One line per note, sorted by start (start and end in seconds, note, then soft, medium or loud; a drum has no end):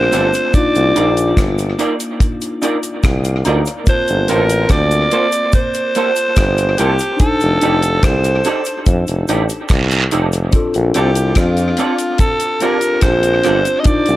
0.00 0.53 A3 soft
0.00 0.54 C4 soft
0.00 0.52 D4 soft
0.00 0.55 F4 medium
0.00 0.56 C5 loud
0.12 0.32 G1 medium
0.12 0.25 C4 medium
0.12 0.26 F4 medium
0.12 0.26 A4 medium
0.12 0.26 D5 medium
0.12 closed hi-hat medium
0.12 cabasa soft
0.34 closed hi-hat medium
0.34 cabasa medium
0.51 3.82 A#3 medium
0.51 3.83 D4 medium
0.51 3.84 D#4 medium
0.51 1.38 D5 loud
0.51 kick loud
0.51 closed hi-hat medium
0.51 cabasa medium
0.57 3.85 F4 medium
0.75 0.94 C2 medium
0.75 closed hi-hat soft
0.75 cabasa soft
0.96 1.34 A#1 medium
0.96 1.09 D#4 medium
0.96 1.09 F4 medium
0.96 1.10 A#4 medium
0.96 1.10 D5 medium
0.96 closed hi-hat medium
0.96 cabasa soft
1.17 closed hi-hat soft
1.17 cabasa medium
1.37 1.75 G1 medium
1.37 kick loud
1.37 cross-stick loud
1.37 closed hi-hat medium
1.37 cabasa medium
1.58 closed hi-hat soft
1.58 cabasa soft
1.79 1.92 D#4 medium
1.79 1.93 F4 medium
1.79 1.93 A#4 medium
1.79 1.93 D5 medium
1.79 closed hi-hat medium
1.79 cabasa soft
2.00 closed hi-hat medium
2.00 cabasa medium
2.20 kick loud
2.20 closed hi-hat medium
2.20 cabasa medium
2.41 closed hi-hat soft
2.41 cabasa soft
2.62 2.76 D#4 medium
2.62 2.76 F4 medium
2.62 2.76 A#4 medium
2.62 3.01 D5 medium
2.62 2.76 D5 medium
2.62 closed hi-hat medium
2.62 cabasa soft
2.83 closed hi-hat soft
2.83 cabasa medium
3.03 3.41 C2 medium
3.03 3.23 F5 medium
3.03 kick loud
3.03 cross-stick loud
3.03 closed hi-hat medium
3.03 cabasa medium
3.24 3.44 F5 medium
3.24 closed hi-hat medium
3.24 cabasa soft
3.45 3.65 D2 medium
3.45 3.59 D#4 medium
3.45 3.59 F4 medium
3.45 3.60 A#4 medium
3.45 3.60 D5 medium
3.45 3.84 A#5 medium
3.45 closed hi-hat medium
3.45 cabasa soft
3.66 muted clean electric guitar stroke soft
3.66 closed hi-hat medium
3.66 cabasa medium
3.84 7.15 A#3 medium
3.84 7.16 C4 medium
3.84 7.17 F4 medium
3.84 kick loud
3.84 closed hi-hat medium
3.84 cabasa medium
3.89 4.31 C5 loud
3.89 7.18 A5 medium
4.08 4.27 G1 medium
4.08 closed hi-hat soft
4.08 cabasa soft
4.28 4.67 A1 medium
4.28 4.42 A#3 medium
4.28 4.42 F4 medium
4.28 4.43 A4 medium
4.28 4.73 A#4 medium
4.28 4.43 C5 medium
4.28 closed hi-hat medium
4.28 cabasa soft
4.50 closed hi-hat soft
4.50 cabasa medium
4.69 5.08 D2 medium
4.69 5.54 D5 loud
4.69 kick loud
4.69 cross-stick loud
4.69 closed hi-hat medium
4.69 cabasa medium
4.91 closed hi-hat soft
4.91 cabasa soft
5.11 5.25 A#3 medium
5.11 5.26 F4 medium
5.11 5.26 A4 medium
5.11 5.26 C5 medium
5.11 closed hi-hat medium
5.11 cabasa soft
5.32 closed hi-hat medium
5.32 cabasa medium
5.52 6.80 C5 loud
5.52 kick loud
5.52 closed hi-hat medium
5.52 cabasa medium
5.74 closed hi-hat soft
5.74 cabasa soft
5.95 6.09 A#3 medium
5.95 6.09 F4 medium
5.95 6.10 A4 medium
5.95 6.10 C5 medium
5.95 closed hi-hat medium
5.95 cabasa soft
6.16 closed hi-hat soft
6.16 cabasa medium
6.36 6.75 G1 medium
6.36 kick loud
6.36 cross-stick loud
6.36 closed hi-hat medium
6.36 cabasa medium
6.58 closed hi-hat medium
6.58 cabasa soft
6.78 6.98 C2 medium
6.78 6.92 A#3 medium
6.78 6.93 F4 medium
6.78 7.20 G4 medium
6.78 6.93 A4 medium
6.78 6.93 C5 medium
6.78 closed hi-hat medium
6.78 cabasa soft
6.99 closed hi-hat medium
6.99 cabasa medium
7.17 10.48 D4 medium
7.17 10.49 D#4 medium
7.17 8.05 A4 loud
7.17 kick loud
7.17 closed hi-hat medium
7.17 cabasa medium
7.21 10.50 G4 medium
7.21 10.51 A4 medium
7.40 7.60 F1 medium
7.40 closed hi-hat soft
7.40 cabasa soft
7.61 8.00 F1 medium
7.61 7.76 D#4 medium
7.61 7.76 G4 medium
7.61 7.76 A4 medium
7.61 7.76 D5 medium
7.61 closed hi-hat medium
7.61 cabasa soft
7.82 closed hi-hat soft
7.82 cabasa medium
8.03 8.41 C2 medium
8.03 8.87 C5 medium
8.03 kick loud
8.03 cross-stick loud
8.03 closed hi-hat medium
8.03 cabasa medium
8.24 closed hi-hat soft
8.24 cabasa soft
8.44 8.59 D#4 medium
8.44 8.59 G4 medium
8.44 8.59 A4 medium
8.44 8.60 D5 medium
8.44 closed hi-hat medium
8.44 cabasa soft
8.65 closed hi-hat medium
8.65 cabasa medium
8.86 9.06 F2 medium
8.86 kick loud
8.86 closed hi-hat medium
8.86 cabasa medium
9.07 9.27 F1 medium
9.07 closed hi-hat soft
9.07 cabasa soft
9.28 9.48 A1 medium
9.28 9.42 D#4 medium
9.28 9.42 G4 medium
9.28 9.43 A4 medium
9.28 9.43 D5 medium
9.28 closed hi-hat medium
9.28 cabasa soft
9.49 closed hi-hat soft
9.49 cabasa medium
9.69 10.08 C2 medium
9.69 kick loud
9.69 cross-stick loud
9.69 closed hi-hat medium
9.69 cabasa medium
9.69 long guiro medium
9.91 closed hi-hat medium
9.91 cabasa soft
10.11 10.50 F1 medium
10.11 10.25 D#4 medium
10.11 10.25 G4 medium
10.11 10.26 A4 medium
10.11 10.26 D5 medium
10.11 closed hi-hat medium
10.11 cabasa soft
10.32 muted clean electric guitar stroke soft
10.32 closed hi-hat medium
10.32 cabasa medium
10.50 12.56 C4 medium
10.50 12.57 D4 medium
10.50 12.58 F4 medium
10.50 kick loud
10.50 closed hi-hat medium
10.50 cabasa medium
10.56 12.59 A4 medium
10.74 10.93 A#1 medium
10.74 closed hi-hat soft
10.74 cabasa soft
10.94 11.33 C2 medium
10.94 11.08 C4 medium
10.94 11.09 F4 medium
10.94 11.39 G4 medium
10.94 11.09 A4 medium
10.94 11.09 D5 medium
10.94 closed hi-hat medium
10.94 cabasa soft
11.15 closed hi-hat medium
11.15 cabasa medium
11.35 11.74 F2 medium
11.35 12.20 F4 medium
11.35 kick loud
11.35 cross-stick loud
11.35 closed hi-hat medium
11.35 cabasa medium
11.57 closed hi-hat soft
11.57 cabasa soft
11.77 11.92 C4 medium
11.77 11.92 F4 medium
11.77 11.92 A4 medium
11.77 11.93 D5 medium
11.77 closed hi-hat medium
11.77 cabasa soft
11.98 closed hi-hat medium
11.98 cabasa medium
12.18 12.64 A4 medium
12.18 kick medium
12.18 closed hi-hat medium
12.18 cabasa medium
12.40 closed hi-hat medium
12.40 cabasa soft
12.60 13.86 C4 medium
12.60 12.75 C4 medium
12.60 13.82 D4 soft
12.60 12.75 F4 medium
12.60 13.86 F4 soft
12.60 13.87 G4 medium
12.60 12.76 A4 medium
12.60 13.02 A#4 medium
12.60 12.76 D5 medium
12.60 closed hi-hat medium
12.60 cabasa soft
12.81 closed hi-hat soft
12.81 cabasa medium
13.01 13.41 A#1 medium
13.01 13.81 C5 loud
13.01 kick loud
13.01 cross-stick loud
13.01 closed hi-hat medium
13.01 cabasa medium
13.23 closed hi-hat medium
13.23 cabasa soft
13.44 13.64 G1 medium
13.44 13.58 C4 medium
13.44 13.58 F4 medium
13.44 13.59 A4 medium
13.44 13.59 D5 medium
13.44 cross-stick medium
13.44 closed hi-hat medium
13.44 cabasa soft
13.65 closed hi-hat medium
13.65 cabasa medium
13.80 14.16 D4 medium
13.80 13.88 D#5 medium
13.84 14.16 D#4 medium
13.84 14.16 F4 medium
13.84 14.16 D5 medium
13.84 kick loud
13.84 closed hi-hat medium
13.84 cabasa medium
13.89 14.16 A#4 medium
14.06 14.16 C2 medium
14.06 closed hi-hat soft
14.06 cabasa soft